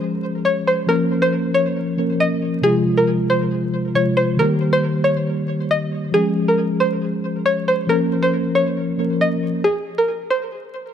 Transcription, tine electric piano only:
0.00 0.84 F3 medium
0.00 0.85 G#3 medium
0.00 0.86 C#4 medium
0.00 0.87 G#4 medium
0.86 1.95 F3 medium
0.86 1.96 A#3 medium
0.86 1.96 C#4 medium
0.91 1.97 A#4 medium
1.97 2.62 F3 medium
1.97 2.64 A#3 soft
1.97 2.64 C#4 soft
1.97 2.64 A#4 medium
2.61 3.91 C3 medium
2.61 3.92 F3 medium
2.61 3.93 G#3 medium
2.66 3.94 F4 medium
3.95 4.39 C3 soft
3.95 4.39 F3 soft
3.95 4.40 G#3 soft
3.95 4.40 F4 medium
4.37 6.10 D#3 medium
4.37 6.10 G3 medium
4.37 6.11 A#3 medium
4.42 6.12 G4 medium
6.12 7.85 F3 medium
6.12 7.86 G#3 medium
6.12 7.87 C#4 medium
6.17 7.87 G#4 medium
7.87 8.96 F3 medium
7.87 8.96 A#3 medium
7.87 8.97 C#4 medium
7.92 8.98 A#4 medium
8.97 9.64 F3 medium
8.97 9.64 A#3 soft
8.97 9.65 C#4 soft
8.97 9.65 A#4 medium

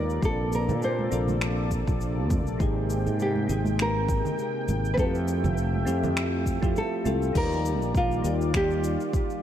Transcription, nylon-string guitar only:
0.00 0.21 A#4 medium
0.25 0.54 A4 medium
0.55 0.84 A#4 medium
0.84 2.27 C5 medium
3.22 3.76 G4 medium
3.82 4.89 A#4 loud
4.94 4.99 B4 medium
4.99 6.73 A4 medium
6.78 7.37 A4 loud
7.37 7.92 A#4 loud
7.97 8.57 F4 medium
8.57 9.42 G4 loud

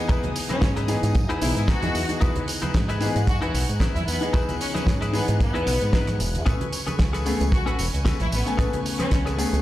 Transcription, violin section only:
0.50 0.64 C#4 loud
1.42 1.51 E4 medium
1.57 1.64 E4 medium
1.69 2.22 F#4 loud
3.28 3.37 F#4 medium
3.42 3.50 F#4 medium
3.95 4.05 E4 medium
4.07 4.24 B3 loud
4.60 4.70 C#4 medium
4.75 4.83 C#4 medium
5.13 5.30 B3 medium
5.40 6.15 B3 loud
7.53 7.62 F#4 medium
7.67 7.75 F#4 medium
8.20 8.30 E4 medium
8.32 8.48 B3 medium
9.00 9.14 C#4 loud

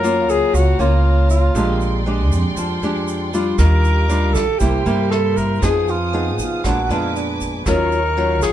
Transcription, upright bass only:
0.00 0.28 F#2 loud
0.28 0.40 C#2 medium
0.53 0.77 C#2 medium
0.79 1.52 C#2 medium
1.55 2.31 A#1 loud
2.31 2.43 F2 medium
2.56 2.81 F2 medium
2.82 3.55 F2 medium
3.59 4.36 D#2 loud
4.36 4.47 A#1 medium
4.61 4.85 C2 medium
4.86 5.59 G2 medium
5.62 6.39 F2 loud
6.39 6.51 B2 medium
6.64 6.88 A#1 medium
6.89 7.62 F2 medium
7.66 8.42 D#2 loud
8.42 8.53 A#1 medium

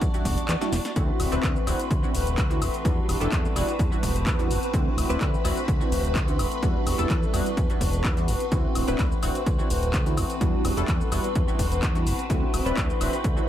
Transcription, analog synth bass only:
0.02 0.09 E2 medium
0.14 0.23 E1 soft
0.25 0.37 E1 medium
0.38 0.47 E2 soft
0.49 0.56 E2 medium
0.72 0.80 E1 loud
0.96 1.11 D2 loud
1.19 1.27 D1 medium
1.32 1.39 D1 medium
1.43 1.58 D2 medium
1.67 1.75 D1 medium
1.91 2.05 D2 medium
2.15 2.39 D1 loud
2.38 2.63 D2 loud
2.61 2.69 D1 medium
2.85 3.00 E2 loud
3.08 3.16 E1 medium
3.21 3.28 E1 medium
3.32 3.47 E2 medium
3.56 3.63 E1 medium
3.79 3.91 E2 medium
3.92 4.01 E1 soft
4.03 4.28 E1 loud
4.26 4.52 E2 loud
4.51 4.58 E1 medium
4.73 4.88 D2 loud
4.97 5.05 D1 medium
5.10 5.17 D1 medium
5.21 5.36 D2 medium
5.45 5.52 D1 medium
5.68 5.83 D2 medium
5.92 6.17 D1 loud
6.15 6.41 D2 loud
6.39 6.47 D1 medium
6.63 6.78 E2 loud
6.87 6.94 E1 medium
6.99 7.06 E1 medium
7.10 7.25 E2 medium
7.34 7.41 E1 medium
7.57 7.69 E2 medium
7.70 7.79 E1 soft
7.81 8.06 E1 loud
8.05 8.30 E2 loud
8.29 8.36 E1 medium
8.52 8.67 D2 loud
8.76 8.83 D1 medium
8.89 8.95 D1 medium
8.99 9.14 D2 medium
9.23 9.30 D1 medium
9.46 9.61 D2 medium
9.70 9.95 D1 loud
9.94 10.19 D2 loud
10.18 10.25 D1 medium
10.41 10.56 E2 loud
10.65 10.72 E1 medium
10.77 10.84 E1 medium
10.88 11.03 E2 medium
11.12 11.19 E1 medium
11.35 11.47 E2 medium
11.48 11.57 E1 soft
11.59 11.84 E1 loud
11.83 12.08 E2 loud
12.06 12.14 E1 medium
12.30 12.45 D2 loud
12.53 12.61 D1 medium
12.66 12.73 D1 medium
12.77 12.92 D2 medium
13.01 13.08 D1 medium
13.24 13.39 D2 medium

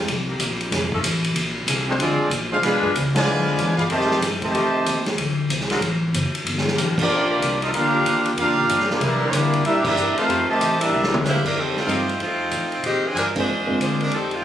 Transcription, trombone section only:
1.88 1.94 F3 medium
1.88 1.94 G#3 medium
1.88 1.93 C4 medium
1.98 2.28 F3 medium
1.98 2.29 G#3 medium
1.98 2.28 D4 medium
2.52 2.57 G#3 medium
2.52 2.57 D4 medium
2.52 2.57 F4 medium
2.63 2.93 G#3 medium
2.63 2.93 D4 medium
2.63 2.93 F4 medium
3.13 3.74 D3 loud
3.13 3.74 F3 loud
3.13 3.74 G#3 medium
3.76 3.83 F3 medium
3.76 3.82 G#3 medium
3.76 3.82 B3 medium
3.89 4.19 C3 loud
3.89 4.19 D#3 loud
3.89 4.19 A3 loud
4.42 5.02 C3 medium
4.42 5.02 D#3 medium
4.42 5.02 A3 medium
7.00 7.58 F3 medium
7.00 7.59 A#3 medium
7.00 7.58 D4 medium
7.62 7.67 D#4 medium
7.75 8.34 A#3 medium
7.75 8.33 D4 medium
7.75 8.34 F4 medium
8.37 8.85 A#3 medium
8.37 8.85 D4 loud
8.37 8.86 F4 loud
8.89 9.01 F3 medium
8.89 9.00 A#3 medium
8.89 9.01 D4 medium
9.02 9.28 E3 medium
9.02 9.27 G3 medium
9.02 9.28 A#3 medium
9.33 9.64 G3 medium
9.33 9.64 A#3 medium
9.33 9.65 D4 medium
9.65 9.83 G3 loud
9.65 9.83 A#3 loud
9.65 9.83 E4 loud
9.86 10.14 G3 medium
9.86 10.15 A#3 medium
9.86 10.15 E4 medium
10.18 10.47 A3 loud
10.18 10.46 C4 loud
10.18 10.47 F4 medium
10.48 10.78 C3 medium
10.48 10.78 D#3 medium
10.48 10.78 A3 medium
10.80 11.20 G3 medium
10.80 11.21 A#3 medium
10.80 11.21 E4 medium

